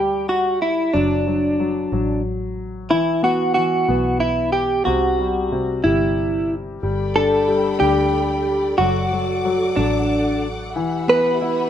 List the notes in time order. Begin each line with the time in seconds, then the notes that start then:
Already playing: D2 G3 G4
0.29 F#4
0.62 E4
0.93 F#1 F#3 D4
1.27 F#3
1.60 F#3
1.92 A1 F#3
2.90 E1 E3 E4
3.23 B3 F#4
3.54 E3 F#4
3.88 B1 B3
4.20 E4
4.52 G4
4.85 C2 C3 F#4
5.19 G3
5.52 C3
5.84 G1 G3 E4
6.83 G1 G3 A4 D5 G5 B5
7.16 D4 A4
7.48 G3
7.80 D2 D4 G4
8.78 F#1 F#3 F#4 A4 F#5 D6
9.12 F#3
9.45 F#3
9.76 A1 F#3 D4
10.75 E1 E3 G4 E5 B5
11.08 B3 B4
11.41 E4